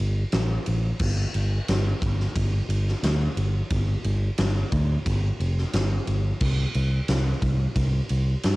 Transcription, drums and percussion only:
0.32 snare, ride
0.66 ride
1.00 kick, crash
1.34 ride
1.68 snare, ride
2.02 kick, ride
2.20 snare
2.36 kick, ride
2.70 ride
2.88 snare
3.03 snare, ride
3.37 ride
3.70 kick, ride
4.04 ride
4.38 snare, ride
4.72 kick, ride
5.06 kick, ride
5.40 ride
5.58 snare
5.73 snare, ride
6.07 ride
6.40 kick, crash
6.74 ride
7.08 snare, ride
7.42 kick, ride
7.76 kick, ride
8.09 ride
8.43 snare, ride

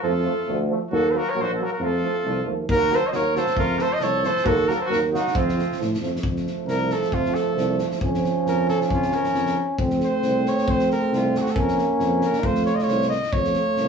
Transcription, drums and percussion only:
2.69 kick
2.92 snare
3.13 snare
3.35 snare
3.46 snare
3.57 kick
3.79 snare
4.00 snare
4.24 snare
4.36 snare
4.46 kick
4.69 snare
4.92 snare
5.15 snare
5.27 snare
5.35 kick
5.49 snare
5.59 snare
5.72 snare
5.81 snare
5.94 snare
6.03 snare
6.16 snare
6.23 kick
6.36 snare
6.47 snare
6.68 snare
6.90 snare
7.01 snare
7.12 kick
7.25 snare
7.35 snare
7.57 snare
7.79 snare
7.91 snare
8.01 kick
8.14 snare
8.24 snare
8.46 snare
8.69 snare
8.81 snare
8.90 kick
9.02 snare
9.12 snare
9.24 snare
9.34 snare
9.46 snare
9.79 kick
9.90 snare
10.01 snare
10.22 snare
10.46 snare
10.58 snare
10.68 kick
10.79 snare
10.91 snare
11.13 snare
11.35 snare
11.46 snare
11.56 kick
11.68 snare
11.78 snare
12.00 snare
12.21 snare
12.33 snare
12.43 kick
12.55 snare
12.66 snare
12.79 snare
12.88 snare
13.01 snare
13.11 snare
13.23 snare
13.33 kick
13.45 snare
13.54 snare
13.76 snare

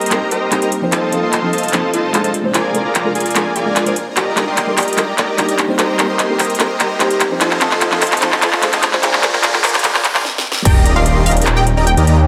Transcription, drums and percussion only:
0.01 closed hi-hat
0.06 closed hi-hat
0.11 clap, closed hi-hat
0.31 closed hi-hat
0.52 clap, closed hi-hat
0.62 closed hi-hat
0.72 closed hi-hat
0.92 clap, closed hi-hat
1.12 closed hi-hat
1.33 clap, closed hi-hat
1.53 closed hi-hat
1.58 closed hi-hat
1.63 closed hi-hat
1.68 closed hi-hat
1.73 clap, closed hi-hat
1.94 closed hi-hat
2.14 clap, closed hi-hat
2.24 closed hi-hat
2.34 closed hi-hat
2.54 clap, closed hi-hat
2.75 closed hi-hat
2.95 clap, closed hi-hat
3.15 closed hi-hat
3.20 closed hi-hat
3.26 closed hi-hat
3.31 closed hi-hat
3.35 clap, closed hi-hat
3.56 closed hi-hat
3.76 clap, closed hi-hat
3.86 closed hi-hat
3.96 closed hi-hat
4.17 clap, closed hi-hat
4.37 clap, closed hi-hat
4.57 clap, closed hi-hat
4.78 clap, open hi-hat
4.83 closed hi-hat
4.88 closed hi-hat
4.93 closed hi-hat
4.98 clap, closed hi-hat
5.18 clap, closed hi-hat
5.38 clap, closed hi-hat
5.49 closed hi-hat
5.58 clap, closed hi-hat
5.79 clap, closed hi-hat
5.99 clap, closed hi-hat
6.19 clap, closed hi-hat
6.39 clap, open hi-hat
6.45 closed hi-hat
6.50 closed hi-hat
6.55 closed hi-hat
6.60 clap, closed hi-hat
6.80 clap, closed hi-hat
7.00 clap, closed hi-hat
7.11 closed hi-hat
7.20 clap, closed hi-hat
7.41 clap, closed hi-hat
7.51 clap
7.61 clap, closed hi-hat
7.71 clap
7.81 clap, closed hi-hat
7.92 clap
8.02 clap, open hi-hat
8.07 closed hi-hat
8.12 clap, closed hi-hat
8.17 closed hi-hat
8.22 clap, closed hi-hat
8.32 clap
8.42 clap, closed hi-hat
8.53 clap
8.62 clap, closed hi-hat
8.73 clap, closed hi-hat
8.83 clap, closed hi-hat
8.93 clap
9.03 clap, closed hi-hat
9.13 clap
9.23 clap, closed hi-hat
9.34 clap
9.43 clap, closed hi-hat
9.54 clap
9.64 clap, open hi-hat
9.69 closed hi-hat
9.74 clap, closed hi-hat
9.79 closed hi-hat
9.84 clap, closed hi-hat
9.94 clap
10.04 clap, closed hi-hat
10.15 clap
10.25 snare
10.38 snare
10.52 snare
10.65 kick, closed hi-hat, crash
10.86 closed hi-hat
11.06 closed hi-hat
11.26 open hi-hat
11.31 closed hi-hat
11.37 closed hi-hat
11.42 closed hi-hat
11.47 clap, closed hi-hat
11.67 closed hi-hat
11.87 closed hi-hat
11.97 closed hi-hat
12.07 closed hi-hat

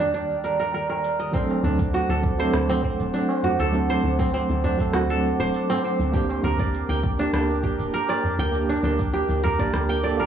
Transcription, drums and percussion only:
0.00 cabasa
0.14 cabasa
0.44 cabasa
0.60 cabasa
0.74 cabasa
0.90 tabla na
1.04 cabasa
1.20 cabasa
1.33 kick, cabasa
1.49 tabla na, cabasa
1.64 tabla ge
1.79 kick, cabasa
1.94 cabasa
2.09 tabla tin, cabasa
2.23 kick
2.39 cabasa
2.54 cross-stick, cabasa
2.70 cabasa
2.83 kick
2.99 tabla tin, cabasa
3.14 cabasa
3.29 tabla na, cabasa
3.43 tabla ge
3.59 tabla tin, cabasa
3.74 cabasa
3.90 cabasa
4.03 tabla na
4.19 kick, cabasa
4.34 cabasa
4.49 tabla tin, cabasa
4.64 tabla ge
4.79 kick, cabasa
4.93 cross-stick, cabasa
5.09 cabasa
5.40 cabasa
5.54 cabasa
5.70 tabla na, cabasa
6.00 cabasa
6.13 kick, cabasa
6.29 tabla na, cabasa
6.43 tabla ge
6.59 kick, cabasa
6.74 cabasa
6.89 tabla tin, cabasa
7.03 kick
7.20 cabasa
7.34 cross-stick, cabasa
7.50 cabasa
7.63 kick
7.80 tabla tin, cabasa
7.94 cabasa
8.09 tabla na, cabasa
8.24 tabla ge
8.39 tabla tin, cabasa
8.54 cabasa
8.70 cabasa
8.84 tabla na
8.99 kick, cabasa
9.14 cabasa
9.30 tabla tin, cabasa
9.45 tabla ge
9.59 kick, cabasa
9.74 cross-stick, cabasa
9.90 cabasa
10.20 cabasa

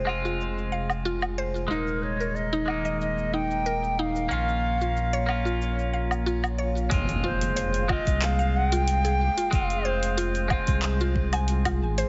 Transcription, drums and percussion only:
0.07 low woodblock
0.25 shaker
0.41 shaker
0.58 shaker
0.90 low woodblock, shaker
1.06 shaker
1.22 low woodblock, shaker
1.56 shaker
1.71 shaker
1.88 shaker
2.21 shaker
2.36 shaker
2.54 shaker
2.68 low woodblock
2.86 shaker
3.01 shaker
3.18 shaker
3.51 shaker
3.66 shaker
3.84 shaker
4.16 shaker
4.31 shaker
4.49 shaker
4.81 shaker
4.97 shaker
5.14 shaker
5.29 low woodblock
5.46 shaker
5.62 shaker
5.79 shaker
6.11 low woodblock, shaker
6.27 shaker
6.44 low woodblock, shaker
6.77 shaker
6.91 kick, open hi-hat, shaker
7.09 open hi-hat, shaker
7.41 open hi-hat, shaker
7.57 open hi-hat, shaker
7.74 open hi-hat, shaker
7.89 kick, low woodblock
8.07 kick, open hi-hat, shaker
8.22 clap, open hi-hat, shaker
8.40 shaker
8.72 open hi-hat, shaker
8.88 open hi-hat, shaker
9.05 open hi-hat, shaker
9.38 open hi-hat, shaker
9.53 kick, open hi-hat, shaker
9.70 open hi-hat, shaker
10.03 open hi-hat, shaker
10.18 open hi-hat, shaker
10.35 open hi-hat, shaker
10.50 kick, low woodblock
10.67 kick, open hi-hat, shaker
10.82 clap, open hi-hat, shaker
11.00 shaker
11.16 kick
11.33 open hi-hat, low woodblock, shaker
11.48 open hi-hat, shaker
11.65 kick, open hi-hat, low woodblock, shaker
11.98 open hi-hat, shaker

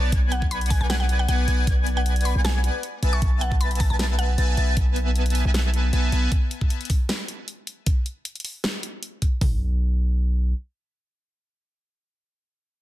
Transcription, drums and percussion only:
0.12 kick, closed hi-hat
0.32 closed hi-hat
0.42 kick
0.51 closed hi-hat
0.61 closed hi-hat
0.66 closed hi-hat
0.70 kick, open hi-hat
0.90 snare, closed hi-hat
1.09 closed hi-hat
1.29 closed hi-hat
1.48 closed hi-hat
1.67 kick, closed hi-hat
1.87 closed hi-hat
2.06 closed hi-hat
2.16 closed hi-hat
2.21 closed hi-hat
2.25 open hi-hat
2.45 snare, closed hi-hat
2.64 closed hi-hat
2.83 closed hi-hat
3.03 closed hi-hat
3.22 kick, closed hi-hat
3.41 closed hi-hat
3.52 kick
3.61 closed hi-hat
3.71 closed hi-hat
3.75 closed hi-hat
3.80 kick, open hi-hat
3.99 snare, closed hi-hat
4.19 closed hi-hat
4.38 closed hi-hat
4.57 closed hi-hat
4.77 kick, closed hi-hat
4.96 closed hi-hat
5.16 closed hi-hat
5.26 closed hi-hat
5.30 closed hi-hat
5.35 open hi-hat
5.54 snare, closed hi-hat
5.74 closed hi-hat
5.93 closed hi-hat
6.12 closed hi-hat
6.32 kick, closed hi-hat
6.51 closed hi-hat
6.61 kick
6.70 closed hi-hat
6.81 closed hi-hat
6.85 closed hi-hat
6.90 kick, open hi-hat
7.09 snare, closed hi-hat
7.28 closed hi-hat
7.48 closed hi-hat
7.67 closed hi-hat
7.86 kick, closed hi-hat
8.06 closed hi-hat
8.25 closed hi-hat
8.36 closed hi-hat
8.40 closed hi-hat
8.45 open hi-hat
8.64 snare, closed hi-hat
8.83 closed hi-hat
9.03 closed hi-hat
9.22 kick, closed hi-hat
9.41 kick, floor tom, open hi-hat

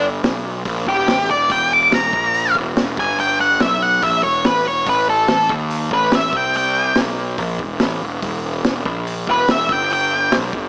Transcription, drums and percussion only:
0.24 snare, open hi-hat
0.65 kick, open hi-hat
0.87 kick
1.08 snare, open hi-hat
1.50 kick, open hi-hat
1.92 snare, open hi-hat
2.13 kick
2.34 open hi-hat
2.55 kick
2.77 snare, open hi-hat
2.97 kick
3.19 open hi-hat
3.60 snare, open hi-hat
4.02 kick, open hi-hat
4.45 snare, open hi-hat
4.87 kick, open hi-hat
5.28 snare, open hi-hat
5.49 kick
5.70 open hi-hat
5.91 kick
6.12 snare, open hi-hat
6.33 kick
6.54 open hi-hat
6.95 snare, open hi-hat
7.38 kick, open hi-hat
7.59 kick
7.80 snare, open hi-hat
8.22 kick, open hi-hat
8.64 snare, open hi-hat
8.86 kick
9.07 open hi-hat
9.27 kick
9.48 snare, open hi-hat
9.69 kick
9.90 open hi-hat
10.32 snare, open hi-hat
10.53 kick

